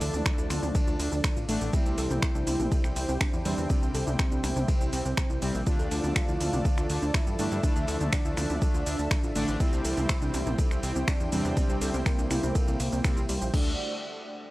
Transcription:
Already playing: D3 F3 A3 D4 E4 A4 D5 A5
0.01 D2 A4, open hi-hat, shaker
0.14 D2, mid tom, shaker
0.26 D4, finger snap, kick, ride, shaker
0.38 D2 E4, shaker
0.50 D2 F4, finger snap, open hi-hat, mid tom, shaker
0.63 D2 F4, mid tom, shaker
0.75 A4, kick, ride, shaker
0.87 D2 F4, shaker
0.99 D2 D3 A3 D4, open hi-hat, shaker
1.12 D2 D4, shaker
1.24 finger snap, kick, ride, shaker
1.37 A1 F4, shaker
1.49 A1 D3 A3 D4, open hi-hat, shaker
1.61 A1, shaker
1.73 G3 C4 E4 G4 C5 G5, kick, ride, shaker
1.86 C2 G4, shaker
1.98 C2 A4, open hi-hat, shaker
2.10 C2, mid tom, shaker
2.22 finger snap, kick, ride, shaker
2.35 C2 D4, shaker
2.47 C2 E4, open hi-hat, mid tom, shaker
2.60 A#1 E4, mid tom, shaker
2.72 A4, kick, ride, shaker
2.84 C2 E4, finger snap, shaker
2.96 C2 C3 G3 C4, open hi-hat, shaker
3.09 C2 C4, shaker
3.21 D4, finger snap, kick, ride, shaker
3.33 E2 E4, shaker
3.45 E2 C3 G3 C4, open hi-hat, shaker
3.58 E2, shaker
3.70 C3 G3 C4, kick, ride, shaker
3.82 C2 G4, shaker
3.94 C2 A4, open hi-hat, shaker
4.07 C2, mid tom, shaker
4.19 C4, finger snap, kick, ride, shaker
4.32 C2 D4, shaker
4.44 C2 E4, finger snap, open hi-hat, mid tom, shaker
4.56 C2 E4, mid tom, shaker
4.68 A4, kick, ride, shaker
4.81 C2 E4, shaker
4.93 C2 C3 G3 C4, open hi-hat, shaker
5.05 C2 C4, shaker
5.17 finger snap, kick, ride, shaker
5.30 C2 E4, shaker
5.42 C2 C3 G3 C4, open hi-hat, shaker
5.55 A#1, shaker
5.67 D3 F3 A3 D4 F4 A4 D5 A5, kick, ride, shaker
5.79 D2 A4, shaker
5.91 D2 A4, open hi-hat, shaker
6.04 D2, mid tom, shaker
6.16 finger snap, kick, ride, shaker
6.28 D2 E4, shaker
6.41 D2 F4, open hi-hat, mid tom, shaker
6.53 C2 F4, mid tom, shaker
6.65 A4, kick, ride, shaker
6.78 D2 F4, finger snap, shaker
6.90 D2 D3 A3 D4, open hi-hat, shaker
7.02 D2 D4, shaker
7.14 E4, finger snap, kick, ride, shaker
7.27 G2 F4, shaker
7.39 G2 D3 A3 D4, open hi-hat, shaker
7.51 G2, shaker
7.63 D3 A3 D4 E5, kick, ride, shaker
7.76 D2 A4, shaker
7.88 D2 A4, open hi-hat, shaker
8.01 D2, mid tom, shaker
8.13 D4, finger snap, kick, ride, shaker
8.25 D2 E4, shaker
8.37 D2 F4, finger snap, open hi-hat, mid tom, shaker
8.50 D2 F4, mid tom, shaker
8.62 A4, kick, ride, shaker
8.74 D2 F4, shaker
8.86 D2 D3 A3 D4, open hi-hat, shaker
8.99 D2 D4, shaker
9.11 finger snap, kick, ride, shaker
9.24 A1 F4, shaker
9.36 A1 D3 A3 D4, open hi-hat, shaker
9.48 A1, shaker
9.60 C3 G3 C4 E4 G4 C5 G5, kick, ride, shaker
9.73 C2 G4, shaker
9.85 C2 A4, open hi-hat, shaker
9.97 C2, mid tom, shaker
10.09 finger snap, kick, ride, shaker
10.22 C2 D4, shaker
10.34 C2 E4, open hi-hat, mid tom, shaker
10.46 A#1 E4, mid tom, shaker
10.59 A4, kick, ride, shaker
10.71 C2 E4, finger snap, shaker
10.83 C2 C3 G3 C4, open hi-hat, shaker
10.96 C2 C4, shaker
11.08 D4, finger snap, kick, ride, shaker
11.20 E2 E4, shaker
11.32 E2 C3 G3 C4, open hi-hat, shaker
11.45 E2, shaker
11.57 C3 G3 C4, kick, ride, shaker
11.69 C2 G4, shaker
11.81 C2 A4, open hi-hat, shaker
11.94 C2, mid tom, shaker
12.06 A#3, finger snap, kick, ride, shaker
12.19 C2 D4, shaker
12.31 C2 E4, finger snap, open hi-hat, mid tom, shaker
12.43 C2 E4, mid tom, shaker
12.55 A4, kick, ride, shaker
12.68 C2 E4, shaker
12.80 C2, open hi-hat, shaker
12.92 C2 C4, shaker
13.04 C3 G3 C4, finger snap, kick, ride, shaker
13.17 C2 E4, shaker
13.29 C2 G3, open hi-hat, shaker
13.42 A#1, shaker
13.54 D2 D3 A3 D4 F#4 D5 F#5, kick, crash

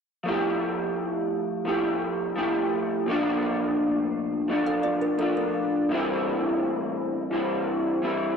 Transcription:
0.24 F3 A3 E4
0.29 G4
1.65 F3 A3 E4 G4
2.36 F3 A3 E4 G4
3.06 A#2 F3 A3 D4
3.11 F4
4.48 F3 A3 D4 F4
4.67 A4 F5
4.83 F4 D5
5.01 D4 A#4
5.18 F3 D4 F4 A4
5.37 D4 A#4
5.89 A2 E3 G3 C4
5.94 E4
7.31 E3 G3 C4 E4
8.02 E3 G3 C4 E4

